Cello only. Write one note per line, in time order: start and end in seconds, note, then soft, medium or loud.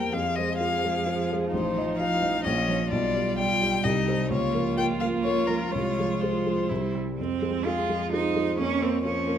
0.00 0.10 G3 soft
0.15 2.88 F3 soft
2.91 4.32 G3 medium
4.31 5.72 A#3 soft
5.73 6.71 G#3 soft
6.70 6.97 G3 soft
7.19 7.66 C4 medium
7.65 8.12 F4 medium
8.12 8.58 D#4 medium
8.58 8.83 C#4 medium
8.82 9.03 C4 medium
9.04 9.38 C#4 medium